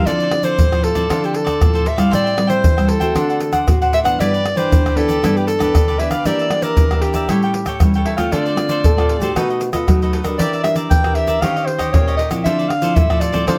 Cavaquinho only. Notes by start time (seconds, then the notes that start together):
0.07 F4 A4 C5 D5
0.22 A4 C5 D5
0.32 muted cavaquinho stroke
0.44 A4 C5 D5
0.72 A4 C5 D5
0.84 F4 A4 C5 D5
0.95 A4 C5 D5
1.09 F4 A4 C5 D5
1.23 A4 C5 D5
1.34 muted cavaquinho stroke
1.45 A4 C5 D5
1.74 A4 C5 D5
1.85 F4 A4 C5 D5
1.96 A4 C5 D5
2.11 A4 C5 E5 G5
2.24 C5 E5 G5
2.36 muted cavaquinho stroke
2.47 C5 E5 G5
2.77 C5 E5 G5
2.87 A4 C5 E5 G5
3.00 C5 E5 G5
3.15 D4 C5 D5 F#5
3.29 C5 D5 F#5
3.41 muted cavaquinho stroke
3.53 C5 D5 F#5
3.82 C5 D5 F#5
3.93 D4 C5 D5 F#5
4.05 C5 D5 F#5
4.20 E4 G4 B4 D5
4.34 G4 B4 D5
4.45 muted cavaquinho stroke
4.57 G4 B4 D5
4.86 G4 B4 D5
4.97 E4 G4 B4 D5
5.08 G4 B4 D5
5.24 E4 G4 B4 D5
5.36 G4 B4 D5
5.49 muted cavaquinho stroke
5.59 G4 B4 D5
5.88 G4 B4 D5
6.00 E4 G4 B4 D5
6.12 G4 B4 D5
6.26 G4 A#4 D5 E5
6.40 A#4 D5 E5
6.52 muted cavaquinho stroke
6.64 A#4 D5 E5
6.92 A#4 D5 E5
7.03 G4 A#4 D5 E5
7.15 A#4 D5 E5
7.29 E4 A4 C#5 G5
7.43 A4 C#5 G5
7.54 muted cavaquinho stroke
7.67 A4 C#5 G5
7.95 A4 C#5 G5
8.06 E4 A4 C#5 G5
8.18 A4 C#5 G5
8.33 F4 A4 C5 D5
8.46 A4 C5 D5
8.58 muted cavaquinho stroke
8.69 A4 C5 D5
8.98 A4 C5 D5
9.09 F4 A4 C5 D5
9.22 A4 C5 D5
9.36 D#4 A4 B4 D#5
9.51 A4 B4 D#5
9.62 muted cavaquinho stroke
9.73 A4 B4 D#5
10.03 A4 B4 D#5
10.13 D#4 A4 B4 D#5
10.24 A4 B4 D#5
10.39 G4 A#4 D5 E5
10.53 A#4 D5 E5
10.64 muted cavaquinho stroke
10.76 A#4 D5 E5
11.05 A#4 D5 E5
11.16 G4 A#4 D5 E5
11.28 A#4 D5 E5
11.43 D#4 G4 C#5 D#5
11.56 G4 C#5 D#5
11.68 muted cavaquinho stroke
11.78 G4 C#5 D#5
12.08 G4 C#5 D#5
12.18 D#4 G4 C#5 D#5
12.31 G4 C#5 D#5
12.46 F4 A4 C5 D5
12.59 A4 C5 D5
12.70 muted cavaquinho stroke
12.82 A4 C5 D5
13.10 A4 C5 D5
13.21 F4 A4 C5 D5
13.32 A4 C5 D5
13.47 F4 A4 C5 D5